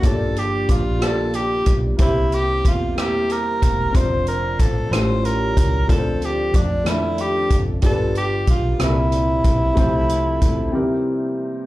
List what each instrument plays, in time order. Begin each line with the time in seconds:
Already playing: french horn section D4
0.01 fingered electric bass G1, upright piano G2 A#3 F4 G4 C#5, tonewheel organ F3 A#3 D4 G4, kick, closed hi-hat
0.06 french horn section F3 G3 A#3, tenor saxophone A4
0.11 upright piano D5
0.36 tenor saxophone G4, closed hi-hat
0.69 fingered electric bass A#1, tenor saxophone F4, kick, closed hi-hat
0.99 upright piano A#3 F4 G4 D5, cross-stick, closed hi-hat
1.03 tenor saxophone A4
1.34 tenor saxophone G4, closed hi-hat
1.66 fingered electric bass B1, kick, closed hi-hat
1.97 fingered electric bass C2, upright piano C3 A#3 E4 G4 C5, french horn section C3 G3 C4, tonewheel organ G3 A#3 C4 G4, kick, closed hi-hat
2.01 tenor saxophone E4
2.32 tenor saxophone G4, closed hi-hat
2.65 fingered electric bass E2, tenor saxophone F4, kick, closed hi-hat
2.95 upright piano A#3 E4 G4 A#4, tenor saxophone G4, cross-stick, closed hi-hat
3.30 tenor saxophone A#4, cross-stick, closed hi-hat
3.62 fingered electric bass E1, kick, closed hi-hat
3.93 fingered electric bass F1, tonewheel organ F3 C4 D4 G4, upright piano C4 D4 F4 C5, tenor saxophone C5, kick, closed hi-hat
3.97 french horn section D3 F3, tonewheel organ C5
4.27 tenor saxophone A#4, closed hi-hat
4.59 fingered electric bass A1, tenor saxophone A4, kick, closed hi-hat
4.91 fingered electric bass A1, upright piano A2 G3 A3 C#4 F4, french horn section F3 G3 C#4, tonewheel organ G3 A3 C#4 F4, tenor saxophone C5, cross-stick, closed hi-hat
5.25 tenor saxophone A#4, closed hi-hat
5.57 fingered electric bass C#2, kick, closed hi-hat
5.87 fingered electric bass D2, upright piano D3 A3 D4 F4 A#4, tonewheel organ F3 C4 D4 A4, french horn section C4 D4, tenor saxophone A4, kick, closed hi-hat
5.98 upright piano C5
6.22 tenor saxophone G4, closed hi-hat
6.54 fingered electric bass F2, tenor saxophone D4, kick, closed hi-hat
6.84 upright piano F3 A3 D4 A4, cross-stick, closed hi-hat
6.90 tenor saxophone E4
7.18 tenor saxophone G4, closed hi-hat
7.50 fingered electric bass F#1, kick, closed hi-hat
7.81 fingered electric bass G1, upright piano G2 G3 D4 F4 A4, tonewheel organ F3 B3 D4 G4, french horn section G3 B3 D4, kick, closed hi-hat
7.86 tenor saxophone A4
7.91 upright piano B4
8.15 tenor saxophone G4, closed hi-hat
8.47 fingered electric bass B1, tenor saxophone F4, kick, closed hi-hat
8.78 fingered electric bass C2, upright piano A#2 G3 C4 E4 A4, tonewheel organ E3 A#3 C4 G4, french horn section A#3 C4 E4, cross-stick, closed hi-hat
8.83 tenor saxophone E4
8.89 upright piano A#4
9.12 closed hi-hat
9.44 fingered electric bass B1, kick, closed hi-hat
9.75 fingered electric bass C2, upright piano C3 F3 A3 C4, tonewheel organ F3 A3 C4 A4, french horn section A4, kick, closed hi-hat
9.79 french horn section F3 A3, upright piano C5
10.09 closed hi-hat
10.42 fingered electric bass D2, kick, closed hi-hat
10.71 upright piano C3 G3 C4 D#4 A#4, tonewheel organ E3 A#3 C4 G4
10.75 french horn section G3 A#3 E4
10.80 upright piano E4